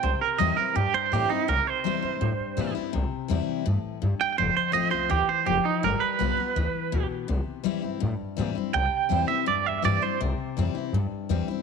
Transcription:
<<
  \new Staff \with { instrumentName = "Clean electric guitar" } { \time 4/4 \key c \major \tempo 4 = 165 c''8 bes'8 ees''8 bes'8 g'8 c''8 g'8 ees'8 | bes'8 c''2. r8 | r2. r8 g''8 | c''8 c''8 ees''8 c''8 g'8 c''8 g'8 ees'8 |
bes'8 b'2. r8 | r1 | g''4. e''8 d''8 e''8 d''8 c''8 | r1 | }
  \new Staff \with { instrumentName = "Steel-string acoustic guitar" } { \time 4/4 \key c \major << { r4 <e g c' e'>8 <c' e'>8 r4 <e g c' e'>8 <c' e'>8 | r4 <e g c' e'>8 <c' e'>8 r4 <e g c' e'>8 <c' e'>8 | r4 <e g c' e'>4 r2 | r4 <f a c' f'>8 <c' f'>8 r2 |
r4 <g b f'>8 <b f'>8 r2 | r4 <e g c' e'>8 <c' e'>8 r4 <e g c' e'>8 <c' e'>8 | r4 <e g c' e'>8 <c' e'>8 r4 <e g c' e'>8 <c' e'>8 | r4 <e g c' e'>8 <c' e'>8 r4 <e g c' e'>8 <c' e'>8 | } \\ { c2 g,2 | c2 g,2 | c2 a,4 g,4 | f,2 e4 f4 |
g2 e4 b,4 | c2 g,2 | c2 g,2 | c2 g,2 | } >> }
  \new Staff \with { instrumentName = "Upright bass" } { \clef bass \time 4/4 \key c \major c,8 r8 e,8 r8 g,8 r8 a,8 r8 | c,8 r8 e,8 g,8 a,8 r8 bes,8 r8 | c,8 r8 e,8 r8 g,8 r8 g,8 r8 | f,,8 r8 a,,8 c,8 d,8 r8 f,,8 r8 |
g,,8 r8 b,,8 r8 d,8 r8 d,8 r8 | c,8 r8 e,8 g,8 a,8 r8 bes,8 r8 | c,8 r8 e,8 r8 e,8 e,8 g,8 r8 | c,8 r8 f,8 r8 g,8 r8 e,8 r8 | }
>>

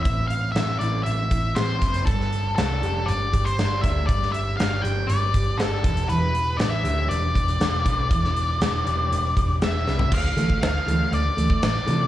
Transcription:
<<
  \new Staff \with { instrumentName = "Lead electric guitar" } { \time 4/4 \key e \phrygian \tempo 4 = 119 e''8 f''8 e''8 d''8 e''4 c''4 | a'4 a'4 d''8. c''8. e''8 | d''8 e''8 f''8 g''8 d''4 a'4 | b'4 d''16 e''8. d''2~ |
d''2. e''4 | f''4 f''4 d''4 d''4 | }
  \new Staff \with { instrumentName = "Steel-string acoustic guitar" } { \time 4/4 \key e \phrygian <a, c' e' b'>4 c'8 e'4 e'8 c'8 b'8 | g4 d'8 g'4 g'8 d'8 b'8 | g4 d'8 g'8 b'8 g'8 d'8 e8 | e4 d'8 g'8 b'8 g'8 d'8 b'8 |
e4 d'8 g'8 b'8 g'8 d'8 b'8 | r8 <e a a'>8 r8 <e a a'>8 r8 <e a a'>8 r8 <e a f' a'>8 | }
  \new Staff \with { instrumentName = "Picked electric bass" } { \clef bass \time 4/4 \key e \phrygian a,,4 a,,8 a,,8 a,,8 a,,8 a,,8 fis,,8 | g,,4 c,8 f,,8 g,,8 g,,8 g,,8 d,8 | g,,4 g,,8 g,,8 g,,8 g,,8 g,,8 e,,8 | e,,4 a,,8 d,8 e,,8 e,,8 e,,8 b,,8 |
e,,4 e,,8 e,,8 e,,8 e,,8 e,,8 c,8 | d,8 d8 d,8 d,8 d,8 d,8 a,,8 c8 | }
  \new DrumStaff \with { instrumentName = "Drums" } \drummode { \time 4/4 <hh bd>8 hh8 <hh sn>8 hh8 hh8 <hh bd>8 <hh sn>8 <hh bd>16 hh16 | <hh bd>16 sn16 hh8 <hh sn>8 hh8 hh8 <hh bd>16 hh16 <hh sn>8 <hh bd>8 | <hh bd>16 sn16 hh8 <hh sn>8 hh8 hh8 <hh bd>8 <hh sn>8 <hh bd>16 hh16 | hh8 hh8 <hh sn>8 hh8 hh8 <hh bd>16 hh16 <hh sn>8 <hh bd>8 |
<hh bd>16 sn16 hh8 <hh sn>8 hh8 hh8 <hh bd>8 <hh sn>8 sn16 tomfh16 | <cymc bd>8 hh16 bd16 <hh sn>8 hh8 hh8 hh16 bd16 <hh sn>8 hh8 | }
>>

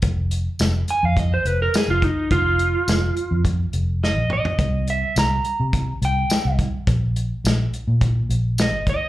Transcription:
<<
  \new Staff \with { instrumentName = "Clean electric guitar" } { \time 4/4 \key f \minor \tempo 4 = 105 r4. aes''16 f''16 ees''16 c''16 ces''16 bes'16 aes'16 f'16 ees'8 | f'2 r4 ees''8 ees''8~ | ees''8 e''8 bes''4. g''4 r8 | r2. ees''8 ees''8 | }
  \new Staff \with { instrumentName = "Fingered electric bass" } { \clef bass \time 4/4 \key f \minor f,,4 f,,8 r16 f,8. f,,8 r16 f,,8 r16 | f,,4 f,,8 r16 f,8. f,,8. bes,,8 r16 | c,4 c,8 r16 c8. c,8 r16 c,8 r16 | bes,,4 bes,,8 r16 bes,8. bes,,8. g,,8 r16 | }
  \new DrumStaff \with { instrumentName = "Drums" } \drummode { \time 4/4 <hh bd>8 hh8 <hh sn tamb>8 hh8 <hh bd>8 hh8 <hh sn tamb>8 <hh bd>8 | <hh bd>8 hh8 <hh sn tamb>8 hh8 <hh bd>8 hh8 sn8 toml16 tomfh16 | <hh bd>8 hh8 <hh sn tamb>8 hh8 <hh bd>8 hh8 <hh sn tamb>8 <hh bd>8 | <hh bd>8 hh8 <hh sn tamb>8 hh8 <hh bd>8 hh8 <hh sn tamb>8 <hh bd>8 | }
>>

